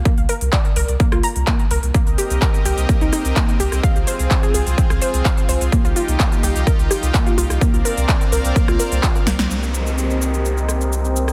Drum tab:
HH |xxoxxxoxxxoxxxox|xxoxxxoxxxoxxxox|xxoxxxoxxxoxxxox|xxoxxxoxxxoxxxox|
SH |----------------|xxxxxxxxxxxxxxxx|xxxxxxxxxxxxxxxx|xxxxxxxxxxxxxxxx|
CP |----x-------x---|----x-------x---|----x-------x---|----x-------x---|
SD |---------r------|----------r----r|---------r------|----------r----r|
BD |o---o---o---o---|o---o---o---o---|o---o---o---o---|o---o---o---o---|

HH |xxoxxxoxxxoxxxox|----------------|
SH |xxxxxxxxxxxxxxxx|xxxxxxxxxxxxxxxx|
CP |----x-------x---|----------------|
SD |---------r----oo|----------r----r|
BD |o---o---o---o---|----------------|